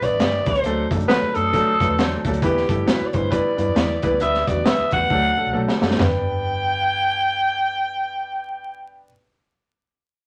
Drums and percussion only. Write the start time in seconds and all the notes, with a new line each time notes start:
0.02 closed hi-hat
0.20 snare, closed hi-hat
0.46 kick, closed hi-hat
0.55 closed hi-hat
0.64 closed hi-hat
0.91 kick, closed hi-hat
1.00 closed hi-hat
1.09 snare, closed hi-hat
1.35 closed hi-hat
1.54 kick, closed hi-hat
1.80 kick, closed hi-hat
1.99 snare, closed hi-hat
2.25 kick, closed hi-hat
2.33 closed hi-hat
2.42 kick, closed hi-hat
2.57 snare
2.69 kick, closed hi-hat
2.88 snare, closed hi-hat
3.13 kick, closed hi-hat
3.32 kick, closed hi-hat
3.58 closed hi-hat
3.76 snare, closed hi-hat
4.02 kick, closed hi-hat
4.20 closed hi-hat
4.34 snare
4.47 kick, closed hi-hat
4.66 snare, closed hi-hat
4.91 kick, closed hi-hat
5.10 kick
5.68 snare
5.82 snare
5.91 snare
5.99 snare, floor tom